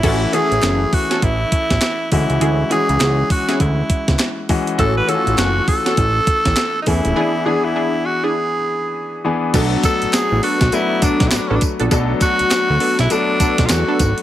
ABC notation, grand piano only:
X:1
M:4/4
L:1/16
Q:"Swing 16ths" 1/4=101
K:Bdor
V:1 name="Grand piano"
[E,A,CF]2 [E,A,CE]6- [E,A,CE] z4 z [E,G,CF]2- | [E,G,CF]2 [E,G,CF]6- [E,G,CF] z4 z [E,G,CF]2 | [E,A,CF]2 [E,A,C^EF]6- [=E,A,C^EF] z4 z [=E,A,CG]2 | [E,B,DG]2 [E,B,DG]6- [E,B,DG] z4 z [E,B,DG]2 |
[F,A,B,DA]6- [F,A,B,DA] z [F,A,B,DB]6- [F,A,B,DB] z | [F,A,B,DA]6- [F,A,B,DA] z [F,A,B,DA]6- [F,A,B,DA] z |]